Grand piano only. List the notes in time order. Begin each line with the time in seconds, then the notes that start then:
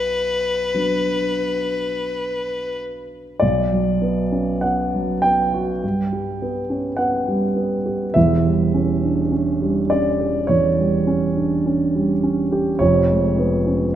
Already playing: B1
0.74 F#3 B3 D4
3.40 B1 D5
3.72 F#3
4.02 B3
4.32 C#4
4.61 B3 F#5
4.94 F#3
5.22 B3 G5
5.54 F#4
5.83 G2
6.13 G3
6.42 B3
6.70 C#4
6.97 B3 F#5
7.28 G3
7.56 B3
7.86 G4
8.14 E1 E2 E5
8.45 G3
8.74 C#4
9.04 D4
9.32 C#4
9.62 G3
9.90 C#4 D5
10.21 G4
10.47 E2 C#5
10.79 G3
11.07 C#4
11.36 D4
11.66 C#4
11.95 G3
12.23 C#4
12.52 G4
12.79 F1 F2 C#5
13.10 G#3
13.38 B3
13.67 C#4